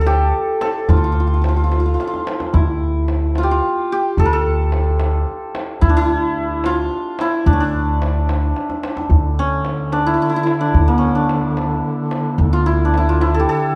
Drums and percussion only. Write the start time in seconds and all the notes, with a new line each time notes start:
0.06 tombak tek
0.34 tombak ka
0.61 tombak tek
0.89 tombak dum
1.44 tombak tek
1.72 tombak tek
2.00 tombak tek
2.14 tombak ka
2.27 tombak tek
2.40 tombak ka
2.54 tombak dum
3.08 tombak tek
3.35 tombak tek
3.63 tombak ka
4.17 tombak dum
4.72 tombak tek
5.00 tombak tek
5.27 tombak ka
5.55 tombak tek
5.82 tombak dum
6.64 tombak tek
6.92 tombak ka
7.19 tombak tek
7.47 tombak dum
7.74 tombak ka
8.02 tombak tek
8.29 tombak tek
8.56 tombak tek
8.70 tombak ka
8.83 tombak tek
8.97 tombak ka
9.10 tombak dum
9.37 tombak ka
9.65 tombak tek
9.92 tombak tek
10.47 tombak tek
10.74 tombak dum
11.02 tombak ka
11.29 tombak tek
11.57 tombak tek
12.11 tombak tek
12.39 tombak dum
12.66 tombak ka
12.94 tombak tek
13.21 tombak tek